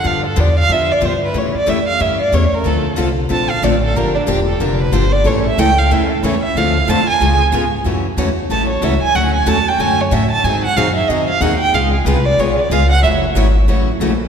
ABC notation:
X:1
M:4/4
L:1/8
Q:"Swing" 1/4=185
K:Dm
V:1 name="Violin"
f A d f e d c =B | ^c d e f e d c B | A2 z2 a f d A | B D z A B =B c d |
^c e g f e A c e | f2 a ^g2 z3 | [K:F#m] z4 a c e g | f g a =g ^g c e a |
g f ^e =e ^d ^e f =g | ^e G B d c d e f | e z6 z |]
V:2 name="Steel-string acoustic guitar"
z8 | z8 | [D,F,CDA] z [D,F,CDA] z [D,F,CDA] z [D,F,CDA] z | [D,F,B,DG] z [D,F,B,DG] z [D,F,B,DG] z [D,F,B,DG] z |
[E,A,^CEA] z [E,A,CEA] z [E,A,CEA] z [E,A,CEA] z | [D,F,CDA] z [D,F,CDA] z [^C,^G,=B,^E^G] z [C,G,B,EG] z | [K:F#m] [F,A,EFc] z [F,A,EFc] z [F,A,EFc] z [F,A,EFc] z | [D,A,CFA] z [D,A,CFA] z [D,A,CFA] z [D,A,CFA] z |
[^D,F,^B,^DG] z [D,F,B,DG] z [D,F,B,DG] z [D,F,B,DG] z | [C,G,B,^EG] z [C,G,B,EG] z [C,G,B,EG] z [C,G,B,EG] z | [F,A,EFc] z [F,A,EFc] z [F,A,EFc] z [F,A,EFc] z |]
V:3 name="Steel-string acoustic guitar"
[D,F,=B,DG] z [D,F,B,DG] z [D,F,B,DG] z [D,F,B,DG] z | [^C,E,A,^CG] z [C,E,A,CG] z [C,E,A,CG] z [C,E,A,CG] z | [D,A,CFA] z [D,A,CFA] z [D,A,CFA] z [D,A,CFA] z | [D,F,B,DG] z [D,F,B,DG] z [D,F,B,DG] z [D,F,B,DG] z |
[^C,E,A,^CA] z [C,E,A,CA] z [C,E,A,CA] z [C,E,A,CA] z | [D,A,CFA] z [D,A,CFA] z [^C,^G,=B,^E^G] z [C,G,B,EG] z | [K:F#m] [C,E,A,CF] z [C,E,A,CF] z [C,E,A,CF] z [C,E,A,CF] z | [D,F,A,CF] z [D,F,A,CF] z [D,F,A,CF] z [D,F,A,CF] z |
[^D,F,^B,^DG] z [D,F,B,DG] z [D,F,B,DG] z [D,F,B,DG] z | [C,G,B,^EG] z [C,G,B,EG] z [C,G,B,EG] z [C,G,B,EG] z | [C,E,A,CF] z [C,E,A,CF] z [C,E,A,CF] z [C,E,A,CF] z |]
V:4 name="Upright bass" clef=bass
G,,2 E,,2 F,,2 G,,2 | A,, z F,,2 G,,2 E,, z | D,,2 C,,2 B,,,2 A,,,2 | G,,,2 E,,,2 F,,,2 G,,,2 |
A,,,2 ^C,,2 F,,2 E,,2 | D,,2 F,,2 ^C,,2 ^G,,2 | [K:F#m] F,,2 E,,2 A,,,2 C,, z | D,,2 E,,2 F,,2 A,,2 |
G,,2 F,,2 ^E,,2 ^D,,2 | C,,2 ^B,,,2 =B,,,2 C,,2 | F,,,2 G,,,2 A,,,2 ^A,,,2 |]